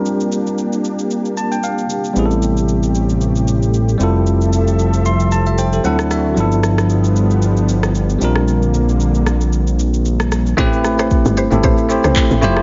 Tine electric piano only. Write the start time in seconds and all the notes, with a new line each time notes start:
Already playing: G3 C4 D4 F4 A#4
1.37 A5
1.52 G5
1.64 F5
2.13 G3 B3 C4
2.18 E4 G#4
2.26 A4
3.97 G3 C4 E4
4.02 F4 A4
5.06 C6
5.32 A5
5.47 E5
5.59 C5 G5
5.73 A4
5.83 F#3 C4 D4 E4 A4 F#5
6.11 E5
6.34 F3 B3 D4
6.39 E4 A4
8.19 G3 C4 D4
8.23 F4 A#4
10.57 A3 C4 E4 G4 B4
11.50 A3 C4 E4 G4 A4
11.89 A3 C4 E4 G4 C5
12.41 A3 E4 F4 G4 C5